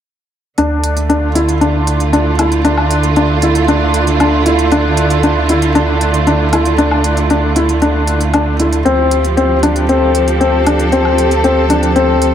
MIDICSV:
0, 0, Header, 1, 5, 480
1, 0, Start_track
1, 0, Key_signature, -1, "minor"
1, 0, Tempo, 517241
1, 535, Time_signature, 4, 2, 24, 8
1, 11454, End_track
2, 0, Start_track
2, 0, Title_t, "Felt piano"
2, 0, Program_c, 0, 0
2, 538, Note_on_c, 0, 62, 69
2, 881, Note_off_c, 0, 62, 0
2, 1015, Note_on_c, 0, 62, 66
2, 1187, Note_off_c, 0, 62, 0
2, 1254, Note_on_c, 0, 64, 63
2, 1427, Note_off_c, 0, 64, 0
2, 1494, Note_on_c, 0, 62, 66
2, 1839, Note_off_c, 0, 62, 0
2, 1975, Note_on_c, 0, 62, 58
2, 2147, Note_off_c, 0, 62, 0
2, 2218, Note_on_c, 0, 64, 59
2, 2389, Note_off_c, 0, 64, 0
2, 2454, Note_on_c, 0, 62, 70
2, 2799, Note_off_c, 0, 62, 0
2, 2937, Note_on_c, 0, 62, 62
2, 3108, Note_off_c, 0, 62, 0
2, 3179, Note_on_c, 0, 64, 63
2, 3350, Note_off_c, 0, 64, 0
2, 3417, Note_on_c, 0, 62, 66
2, 3761, Note_off_c, 0, 62, 0
2, 3899, Note_on_c, 0, 62, 60
2, 4070, Note_off_c, 0, 62, 0
2, 4138, Note_on_c, 0, 64, 57
2, 4309, Note_off_c, 0, 64, 0
2, 4378, Note_on_c, 0, 62, 75
2, 4722, Note_off_c, 0, 62, 0
2, 4857, Note_on_c, 0, 62, 62
2, 5028, Note_off_c, 0, 62, 0
2, 5098, Note_on_c, 0, 64, 62
2, 5269, Note_off_c, 0, 64, 0
2, 5337, Note_on_c, 0, 62, 68
2, 5680, Note_off_c, 0, 62, 0
2, 5818, Note_on_c, 0, 62, 64
2, 5990, Note_off_c, 0, 62, 0
2, 6058, Note_on_c, 0, 64, 62
2, 6229, Note_off_c, 0, 64, 0
2, 6294, Note_on_c, 0, 62, 77
2, 6639, Note_off_c, 0, 62, 0
2, 6777, Note_on_c, 0, 62, 68
2, 6949, Note_off_c, 0, 62, 0
2, 7016, Note_on_c, 0, 64, 62
2, 7188, Note_off_c, 0, 64, 0
2, 7256, Note_on_c, 0, 62, 66
2, 7600, Note_off_c, 0, 62, 0
2, 7739, Note_on_c, 0, 62, 62
2, 7910, Note_off_c, 0, 62, 0
2, 7977, Note_on_c, 0, 64, 58
2, 8149, Note_off_c, 0, 64, 0
2, 8215, Note_on_c, 0, 60, 71
2, 8560, Note_off_c, 0, 60, 0
2, 8697, Note_on_c, 0, 60, 65
2, 8868, Note_off_c, 0, 60, 0
2, 8935, Note_on_c, 0, 62, 66
2, 9108, Note_off_c, 0, 62, 0
2, 9177, Note_on_c, 0, 60, 69
2, 9521, Note_off_c, 0, 60, 0
2, 9655, Note_on_c, 0, 60, 62
2, 9827, Note_off_c, 0, 60, 0
2, 9897, Note_on_c, 0, 62, 61
2, 10068, Note_off_c, 0, 62, 0
2, 10137, Note_on_c, 0, 60, 70
2, 10481, Note_off_c, 0, 60, 0
2, 10616, Note_on_c, 0, 60, 68
2, 10788, Note_off_c, 0, 60, 0
2, 10856, Note_on_c, 0, 62, 64
2, 11028, Note_off_c, 0, 62, 0
2, 11095, Note_on_c, 0, 60, 68
2, 11439, Note_off_c, 0, 60, 0
2, 11454, End_track
3, 0, Start_track
3, 0, Title_t, "String section"
3, 0, Program_c, 1, 48
3, 540, Note_on_c, 1, 50, 70
3, 727, Note_on_c, 1, 57, 62
3, 1089, Note_on_c, 1, 65, 66
3, 1225, Note_on_c, 1, 64, 58
3, 8218, Note_off_c, 1, 50, 0
3, 8218, Note_off_c, 1, 57, 0
3, 8221, Note_on_c, 1, 53, 72
3, 8307, Note_on_c, 1, 67, 59
3, 8547, Note_on_c, 1, 60, 57
3, 9003, Note_on_c, 1, 69, 67
3, 9389, Note_off_c, 1, 65, 0
3, 9418, Note_off_c, 1, 64, 0
3, 11454, Note_off_c, 1, 53, 0
3, 11454, Note_off_c, 1, 60, 0
3, 11454, Note_off_c, 1, 67, 0
3, 11454, Note_off_c, 1, 69, 0
3, 11454, End_track
4, 0, Start_track
4, 0, Title_t, "Sub bass"
4, 0, Program_c, 2, 38
4, 534, Note_on_c, 2, 38, 78
4, 8191, Note_off_c, 2, 38, 0
4, 8215, Note_on_c, 2, 38, 80
4, 11454, Note_off_c, 2, 38, 0
4, 11454, End_track
5, 0, Start_track
5, 0, Title_t, "Drums"
5, 536, Note_on_c, 9, 42, 24
5, 629, Note_off_c, 9, 42, 0
5, 775, Note_on_c, 9, 42, 62
5, 868, Note_off_c, 9, 42, 0
5, 897, Note_on_c, 9, 42, 34
5, 989, Note_off_c, 9, 42, 0
5, 1018, Note_on_c, 9, 42, 23
5, 1111, Note_off_c, 9, 42, 0
5, 1257, Note_on_c, 9, 42, 56
5, 1350, Note_off_c, 9, 42, 0
5, 1379, Note_on_c, 9, 42, 34
5, 1471, Note_off_c, 9, 42, 0
5, 1498, Note_on_c, 9, 42, 23
5, 1590, Note_off_c, 9, 42, 0
5, 1738, Note_on_c, 9, 42, 56
5, 1830, Note_off_c, 9, 42, 0
5, 1857, Note_on_c, 9, 42, 32
5, 1950, Note_off_c, 9, 42, 0
5, 1979, Note_on_c, 9, 42, 24
5, 2072, Note_off_c, 9, 42, 0
5, 2217, Note_on_c, 9, 42, 57
5, 2217, Note_on_c, 9, 77, 47
5, 2310, Note_off_c, 9, 42, 0
5, 2310, Note_off_c, 9, 77, 0
5, 2336, Note_on_c, 9, 42, 33
5, 2429, Note_off_c, 9, 42, 0
5, 2456, Note_on_c, 9, 42, 26
5, 2549, Note_off_c, 9, 42, 0
5, 2575, Note_on_c, 9, 77, 48
5, 2668, Note_off_c, 9, 77, 0
5, 2696, Note_on_c, 9, 42, 60
5, 2789, Note_off_c, 9, 42, 0
5, 2815, Note_on_c, 9, 42, 35
5, 2908, Note_off_c, 9, 42, 0
5, 2935, Note_on_c, 9, 42, 25
5, 3028, Note_off_c, 9, 42, 0
5, 3175, Note_on_c, 9, 42, 58
5, 3267, Note_off_c, 9, 42, 0
5, 3296, Note_on_c, 9, 42, 35
5, 3389, Note_off_c, 9, 42, 0
5, 3417, Note_on_c, 9, 42, 26
5, 3510, Note_off_c, 9, 42, 0
5, 3657, Note_on_c, 9, 42, 57
5, 3749, Note_off_c, 9, 42, 0
5, 3778, Note_on_c, 9, 42, 34
5, 3871, Note_off_c, 9, 42, 0
5, 3899, Note_on_c, 9, 42, 26
5, 3899, Note_on_c, 9, 77, 57
5, 3991, Note_off_c, 9, 42, 0
5, 3991, Note_off_c, 9, 77, 0
5, 4138, Note_on_c, 9, 42, 57
5, 4231, Note_off_c, 9, 42, 0
5, 4257, Note_on_c, 9, 42, 33
5, 4350, Note_off_c, 9, 42, 0
5, 4376, Note_on_c, 9, 42, 26
5, 4469, Note_off_c, 9, 42, 0
5, 4614, Note_on_c, 9, 42, 64
5, 4707, Note_off_c, 9, 42, 0
5, 4736, Note_on_c, 9, 42, 35
5, 4829, Note_off_c, 9, 42, 0
5, 4856, Note_on_c, 9, 42, 25
5, 4948, Note_off_c, 9, 42, 0
5, 5096, Note_on_c, 9, 42, 60
5, 5188, Note_off_c, 9, 42, 0
5, 5216, Note_on_c, 9, 42, 36
5, 5309, Note_off_c, 9, 42, 0
5, 5338, Note_on_c, 9, 42, 25
5, 5431, Note_off_c, 9, 42, 0
5, 5578, Note_on_c, 9, 42, 58
5, 5671, Note_off_c, 9, 42, 0
5, 5697, Note_on_c, 9, 42, 33
5, 5790, Note_off_c, 9, 42, 0
5, 5817, Note_on_c, 9, 42, 26
5, 5910, Note_off_c, 9, 42, 0
5, 6058, Note_on_c, 9, 42, 60
5, 6058, Note_on_c, 9, 77, 49
5, 6150, Note_off_c, 9, 42, 0
5, 6150, Note_off_c, 9, 77, 0
5, 6175, Note_on_c, 9, 42, 34
5, 6268, Note_off_c, 9, 42, 0
5, 6296, Note_on_c, 9, 42, 26
5, 6389, Note_off_c, 9, 42, 0
5, 6416, Note_on_c, 9, 77, 46
5, 6509, Note_off_c, 9, 77, 0
5, 6534, Note_on_c, 9, 42, 65
5, 6627, Note_off_c, 9, 42, 0
5, 6654, Note_on_c, 9, 42, 33
5, 6747, Note_off_c, 9, 42, 0
5, 6774, Note_on_c, 9, 42, 24
5, 6867, Note_off_c, 9, 42, 0
5, 7015, Note_on_c, 9, 42, 62
5, 7108, Note_off_c, 9, 42, 0
5, 7136, Note_on_c, 9, 42, 34
5, 7229, Note_off_c, 9, 42, 0
5, 7255, Note_on_c, 9, 42, 26
5, 7348, Note_off_c, 9, 42, 0
5, 7493, Note_on_c, 9, 42, 55
5, 7586, Note_off_c, 9, 42, 0
5, 7615, Note_on_c, 9, 42, 32
5, 7708, Note_off_c, 9, 42, 0
5, 7735, Note_on_c, 9, 42, 25
5, 7735, Note_on_c, 9, 77, 51
5, 7828, Note_off_c, 9, 42, 0
5, 7828, Note_off_c, 9, 77, 0
5, 7977, Note_on_c, 9, 42, 58
5, 8070, Note_off_c, 9, 42, 0
5, 8097, Note_on_c, 9, 42, 33
5, 8190, Note_off_c, 9, 42, 0
5, 8219, Note_on_c, 9, 42, 26
5, 8311, Note_off_c, 9, 42, 0
5, 8457, Note_on_c, 9, 42, 61
5, 8550, Note_off_c, 9, 42, 0
5, 8579, Note_on_c, 9, 42, 34
5, 8672, Note_off_c, 9, 42, 0
5, 8699, Note_on_c, 9, 42, 24
5, 8791, Note_off_c, 9, 42, 0
5, 8936, Note_on_c, 9, 42, 60
5, 9029, Note_off_c, 9, 42, 0
5, 9055, Note_on_c, 9, 42, 35
5, 9148, Note_off_c, 9, 42, 0
5, 9178, Note_on_c, 9, 42, 24
5, 9271, Note_off_c, 9, 42, 0
5, 9417, Note_on_c, 9, 42, 58
5, 9510, Note_off_c, 9, 42, 0
5, 9537, Note_on_c, 9, 42, 32
5, 9630, Note_off_c, 9, 42, 0
5, 9659, Note_on_c, 9, 42, 26
5, 9752, Note_off_c, 9, 42, 0
5, 9897, Note_on_c, 9, 42, 54
5, 9897, Note_on_c, 9, 77, 46
5, 9990, Note_off_c, 9, 42, 0
5, 9990, Note_off_c, 9, 77, 0
5, 10017, Note_on_c, 9, 42, 32
5, 10110, Note_off_c, 9, 42, 0
5, 10136, Note_on_c, 9, 42, 23
5, 10229, Note_off_c, 9, 42, 0
5, 10256, Note_on_c, 9, 77, 44
5, 10349, Note_off_c, 9, 77, 0
5, 10378, Note_on_c, 9, 42, 56
5, 10471, Note_off_c, 9, 42, 0
5, 10498, Note_on_c, 9, 42, 31
5, 10591, Note_off_c, 9, 42, 0
5, 10617, Note_on_c, 9, 42, 23
5, 10710, Note_off_c, 9, 42, 0
5, 10857, Note_on_c, 9, 42, 55
5, 10950, Note_off_c, 9, 42, 0
5, 10977, Note_on_c, 9, 42, 32
5, 11070, Note_off_c, 9, 42, 0
5, 11098, Note_on_c, 9, 42, 24
5, 11190, Note_off_c, 9, 42, 0
5, 11337, Note_on_c, 9, 42, 54
5, 11430, Note_off_c, 9, 42, 0
5, 11454, End_track
0, 0, End_of_file